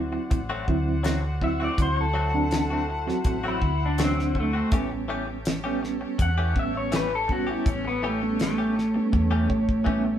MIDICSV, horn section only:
0, 0, Header, 1, 2, 480
1, 0, Start_track
1, 0, Tempo, 734394
1, 1168, Time_signature, 4, 2, 24, 8
1, 6658, End_track
2, 0, Start_track
2, 0, Title_t, "Horn section"
2, 0, Program_c, 0, 61
2, 0, Note_on_c, 0, 66, 75
2, 0, Note_on_c, 0, 72, 67
2, 0, Note_on_c, 0, 74, 64
2, 0, Note_on_c, 0, 78, 82
2, 1154, Note_off_c, 0, 74, 0
2, 1164, Note_on_c, 0, 64, 59
2, 1164, Note_on_c, 0, 76, 64
2, 3068, Note_off_c, 0, 64, 0
2, 3068, Note_off_c, 0, 76, 0
2, 3069, Note_off_c, 0, 66, 0
2, 3069, Note_off_c, 0, 72, 0
2, 3069, Note_off_c, 0, 78, 0
2, 3081, Note_on_c, 0, 67, 75
2, 3082, Note_on_c, 0, 69, 70
2, 3083, Note_on_c, 0, 61, 62
2, 3083, Note_on_c, 0, 73, 67
2, 6658, Note_off_c, 0, 61, 0
2, 6658, Note_off_c, 0, 67, 0
2, 6658, Note_off_c, 0, 69, 0
2, 6658, Note_off_c, 0, 73, 0
2, 6658, End_track
0, 0, End_of_file